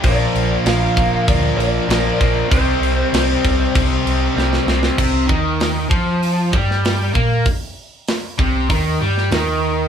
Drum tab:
CC |x-x-x-x-x-x-x-x-|x-x-x-x-x-x-----|x---------------|----------------|
HH |----------------|----------------|----o---o---o---|o---o---o---o---|
SD |----o-------o---|----o-------oooo|----o------oo---|----o------oo---|
BD |o-----o-o-----o-|o-----o-o-------|o-o---o---o---o-|o-----o-o-------|